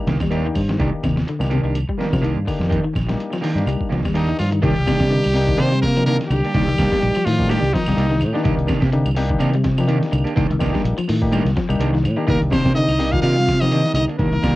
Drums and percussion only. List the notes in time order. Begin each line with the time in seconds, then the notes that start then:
0.07 snare, closed hi-hat
0.20 kick, snare, closed hi-hat, claves
0.31 closed hi-hat
0.55 kick, open hi-hat, claves
0.69 snare, closed hi-hat
0.80 kick, closed hi-hat
1.03 kick, snare, closed hi-hat, claves
1.17 snare
1.28 closed hi-hat
1.41 snare, claves
1.51 closed hi-hat
1.75 closed hi-hat, claves
1.89 kick
2.01 snare, closed hi-hat
2.13 kick, snare, claves
2.24 closed hi-hat
2.47 kick, open hi-hat, claves
2.61 snare
2.71 kick, closed hi-hat
2.95 kick, snare, closed hi-hat, claves
3.09 snare, closed hi-hat
3.20 closed hi-hat
3.33 snare, claves
3.44 open hi-hat
3.58 snare, closed hi-hat
3.67 closed hi-hat, claves
3.81 kick
3.92 snare, closed hi-hat
4.05 kick, snare, closed hi-hat, claves
4.15 closed hi-hat
4.39 open hi-hat, claves
4.52 closed hi-hat
4.63 kick, closed hi-hat
4.76 closed hi-hat
4.87 kick, snare, closed hi-hat, claves
5.00 kick, snare, closed hi-hat
5.12 closed hi-hat
5.24 closed hi-hat, claves
5.36 open hi-hat
5.48 kick
5.59 closed hi-hat, claves
5.72 closed hi-hat
5.83 kick, snare, closed hi-hat
5.97 closed hi-hat, claves
6.07 snare, closed hi-hat
6.21 snare, closed hi-hat
6.31 closed hi-hat, claves
6.44 closed hi-hat
6.54 kick, closed hi-hat
6.69 closed hi-hat
6.78 kick, snare, closed hi-hat, claves
6.92 kick, snare
7.02 closed hi-hat
7.15 closed hi-hat, claves
7.27 open hi-hat
7.39 kick, snare
7.49 closed hi-hat, claves
7.64 closed hi-hat
7.74 kick, snare, closed hi-hat
7.86 snare, closed hi-hat, claves
7.98 closed hi-hat
8.12 snare
8.21 closed hi-hat, claves
8.35 snare
8.45 kick, closed hi-hat
8.59 closed hi-hat
8.68 kick, snare, closed hi-hat, claves
8.82 kick, snare, closed hi-hat
8.93 closed hi-hat
9.06 closed hi-hat, claves
9.17 open hi-hat
9.30 kick
9.40 closed hi-hat, claves
9.54 closed hi-hat
9.64 kick, snare, closed hi-hat
9.78 snare, closed hi-hat, claves
9.89 closed hi-hat
10.03 snare, closed hi-hat
10.13 closed hi-hat, claves
10.27 closed hi-hat
10.37 kick, closed hi-hat
10.51 closed hi-hat
10.61 kick, snare, closed hi-hat, claves
10.75 kick, snare
10.86 closed hi-hat
10.98 closed hi-hat, claves
11.09 open hi-hat
11.22 kick
11.33 closed hi-hat, claves
11.47 snare, closed hi-hat
11.57 kick, snare, closed hi-hat
11.70 closed hi-hat, claves
11.81 closed hi-hat
11.95 snare
12.05 closed hi-hat, claves
12.28 kick, closed hi-hat
12.42 closed hi-hat
12.52 kick, snare, closed hi-hat, claves
12.65 kick, snare, closed hi-hat
12.77 closed hi-hat
12.89 closed hi-hat, claves
13.00 open hi-hat
13.13 kick, closed hi-hat
13.24 closed hi-hat, claves
13.38 snare, closed hi-hat
13.48 kick, snare, closed hi-hat
13.62 snare, closed hi-hat, claves
13.72 closed hi-hat
13.85 snare, closed hi-hat
13.96 closed hi-hat, claves
14.09 closed hi-hat
14.19 kick, closed hi-hat
14.33 closed hi-hat
14.43 kick, snare, closed hi-hat, claves